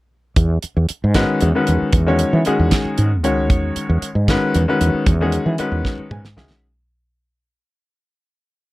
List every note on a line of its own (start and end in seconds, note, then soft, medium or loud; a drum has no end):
0.36 0.57 E2 medium
0.36 kick loud
0.36 closed hi-hat medium
0.62 muted fretless electric bass stroke soft
0.62 closed hi-hat medium
0.77 0.86 E2 medium
0.89 muted fretless electric bass stroke soft
0.89 closed hi-hat medium
1.04 1.23 G#2 medium
1.14 1.46 D#3 medium
1.14 1.46 G#3 medium
1.14 1.46 C#4 medium
1.14 1.47 F#4 medium
1.14 1.46 B4 medium
1.14 kick medium
1.14 snare loud
1.14 closed hi-hat medium
1.41 1.52 E2 medium
1.41 closed hi-hat medium
1.55 1.96 D#3 medium
1.55 1.96 G#3 medium
1.55 1.96 C#4 medium
1.55 1.97 F#4 medium
1.55 1.97 B4 medium
1.67 1.78 E2 medium
1.67 closed hi-hat medium
1.82 muted fretless electric bass stroke soft
1.93 2.23 E2 medium
1.93 kick loud
1.93 closed hi-hat medium
2.06 2.38 D#3 medium
2.06 2.38 G#3 medium
2.06 2.38 C#4 medium
2.06 2.38 F#4 medium
2.06 2.38 C#5 medium
2.19 closed hi-hat medium
2.33 2.43 E3 medium
2.45 3.08 D#3 medium
2.45 3.08 G#3 medium
2.45 3.08 C#4 medium
2.45 3.09 F#4 medium
2.45 3.08 G#4 medium
2.45 muted fretless electric bass stroke soft
2.45 closed hi-hat medium
2.59 2.69 E2 medium
2.71 kick medium
2.71 snare medium
2.71 closed hi-hat medium
2.85 muted fretless electric bass stroke soft
2.98 3.24 G#2 medium
2.98 closed hi-hat medium
3.23 3.50 C#2 medium
3.23 4.07 D#3 medium
3.23 4.07 G#3 medium
3.23 4.07 C#4 medium
3.23 4.07 F#4 medium
3.23 4.07 C#5 medium
3.23 closed hi-hat medium
3.50 3.70 E2 medium
3.50 kick loud
3.50 closed hi-hat medium
3.76 muted fretless electric bass stroke soft
3.76 closed hi-hat medium
3.89 3.99 E2 medium
4.02 muted fretless electric bass stroke soft
4.02 closed hi-hat medium
4.15 4.35 G#2 medium
4.28 4.60 D#3 medium
4.28 4.60 G#3 medium
4.28 4.60 C#4 medium
4.28 4.60 F#4 medium
4.28 4.60 B4 loud
4.28 kick medium
4.28 snare medium
4.28 closed hi-hat medium
4.54 4.65 E2 medium
4.54 closed hi-hat medium
4.68 5.09 D#3 medium
4.68 5.09 G#3 medium
4.68 5.09 C#4 medium
4.68 5.10 F#4 medium
4.68 5.10 B4 medium
4.81 4.91 E2 medium
4.81 closed hi-hat medium
4.94 muted fretless electric bass stroke soft
5.06 5.37 E2 medium
5.06 kick loud
5.06 closed hi-hat medium
5.21 5.51 D#3 medium
5.21 5.52 G#3 medium
5.21 5.52 C#4 medium
5.21 5.52 F#4 medium
5.21 5.52 G#4 medium
5.32 closed hi-hat medium
5.46 5.56 E3 medium
5.58 6.21 D#3 medium
5.58 6.21 G#3 medium
5.58 6.21 C#4 medium
5.58 6.21 F#4 medium
5.58 6.21 B4 medium
5.58 muted fretless electric bass stroke soft
5.58 closed hi-hat medium
5.72 5.82 E2 medium
5.85 kick medium
5.85 snare medium
5.98 muted fretless electric bass stroke soft
6.11 6.38 G#2 medium
6.11 6.36 G#5 medium
6.11 mid tom medium
6.25 snare medium
6.36 6.47 C#2 medium
6.36 6.63 D#3 medium
6.36 6.63 G#3 medium
6.36 6.63 C#4 medium
6.36 6.64 F#4 medium
6.36 6.64 G#4 medium
6.36 6.62 E5 medium
6.36 snare medium
6.51 snare medium